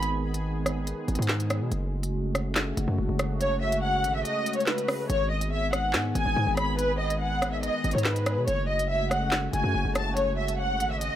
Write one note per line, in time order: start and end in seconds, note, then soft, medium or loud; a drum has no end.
0.00 0.94 G#1 loud
0.00 1.68 D#3 medium
0.00 8.44 G#3 medium
0.00 1.68 B3 medium
0.00 1.68 G#4 medium
0.00 closed hi-hat medium
0.34 closed hi-hat medium
0.66 cross-stick medium
0.66 closed hi-hat medium
0.87 closed hi-hat medium
1.08 1.18 G#1 loud
1.08 closed hi-hat soft
1.15 1.62 G#2 loud
1.15 closed hi-hat medium
1.22 closed hi-hat medium
1.29 snare loud
1.29 clap medium
1.40 closed hi-hat medium
1.50 cross-stick loud
1.50 closed hi-hat medium
1.61 1.71 B2 medium
1.72 2.73 F#1 loud
1.72 5.06 C#3 medium
1.72 5.06 A3 medium
1.72 5.06 F#4 medium
1.72 closed hi-hat medium
2.03 closed hi-hat medium
2.35 cross-stick medium
2.35 closed hi-hat medium
2.55 snare loud
2.55 clap loud
2.55 closed hi-hat medium
2.77 2.87 F#1 loud
2.77 closed hi-hat medium
2.88 2.98 F#2 loud
2.98 3.08 F#1 loud
3.09 4.05 F#1 loud
3.19 cross-stick loud
3.19 closed hi-hat medium
3.41 3.59 C#5 loud
3.41 closed hi-hat medium
3.62 3.80 E5 medium
3.72 closed hi-hat medium
3.83 4.13 F#5 medium
4.04 4.24 G#1 loud
4.04 closed hi-hat medium
4.15 4.24 E5 medium
4.25 4.55 D#5 medium
4.25 closed hi-hat medium
4.46 closed hi-hat medium
4.53 4.66 C#5 medium
4.53 closed hi-hat medium
4.60 closed hi-hat soft
4.67 5.07 B4 medium
4.67 snare loud
4.67 clap medium
4.78 closed hi-hat medium
4.88 cross-stick loud
4.88 open hi-hat medium
5.10 5.96 G#1 loud
5.10 8.44 D#3 medium
5.10 8.44 B3 medium
5.10 8.44 G#4 medium
5.10 5.28 C#5 loud
5.10 closed hi-hat medium
5.31 5.49 D#5 medium
5.41 closed hi-hat medium
5.52 5.70 E5 medium
5.73 5.91 F#5 medium
5.73 cross-stick loud
5.73 closed hi-hat medium
5.93 6.14 G#2 loud
5.93 snare loud
5.93 clap loud
5.93 closed hi-hat medium
6.15 6.25 G#1 loud
6.15 6.55 G#5 medium
6.15 closed hi-hat medium
6.26 6.36 G#1 loud
6.36 6.47 G#2 loud
6.47 7.70 G#1 loud
6.57 6.76 B5 medium
6.57 cross-stick loud
6.57 closed hi-hat medium
6.79 6.97 B4 loud
6.79 closed hi-hat medium
7.00 7.18 D#5 medium
7.10 closed hi-hat medium
7.21 7.51 F#5 medium
7.42 cross-stick loud
7.42 closed hi-hat medium
7.53 7.62 E5 medium
7.63 7.93 D#5 loud
7.63 closed hi-hat medium
7.84 7.94 G#1 loud
7.84 closed hi-hat soft
7.91 8.39 G#2 loud
7.91 8.04 C#5 medium
7.91 closed hi-hat medium
7.98 closed hi-hat medium
8.05 8.45 B4 medium
8.05 snare loud
8.05 clap medium
8.16 closed hi-hat medium
8.26 cross-stick loud
8.26 closed hi-hat medium
8.37 8.47 B2 loud
8.48 9.49 F#1 loud
8.48 11.16 C#3 medium
8.48 11.16 G#3 medium
8.48 11.16 A3 medium
8.48 11.16 F#4 medium
8.48 8.66 C#5 loud
8.48 closed hi-hat medium
8.69 8.87 D#5 medium
8.79 closed hi-hat medium
8.90 9.08 E5 medium
9.11 9.29 F#5 medium
9.11 cross-stick loud
9.11 closed hi-hat medium
9.32 snare loud
9.32 clap loud
9.32 closed hi-hat medium
9.53 9.63 F#1 loud
9.53 9.93 G#5 medium
9.53 closed hi-hat medium
9.64 9.74 F#2 loud
9.74 9.85 F#1 loud
9.85 10.82 F#1 loud
9.95 10.14 A5 medium
9.95 cross-stick loud
9.95 closed hi-hat medium
10.17 10.35 C#5 loud
10.17 closed hi-hat medium
10.38 10.56 E5 medium
10.48 closed hi-hat medium
10.59 10.89 F#5 loud
10.80 11.10 G#1 loud
10.80 closed hi-hat medium
10.91 11.00 E5 medium
11.01 11.16 D#5 medium
11.01 closed hi-hat medium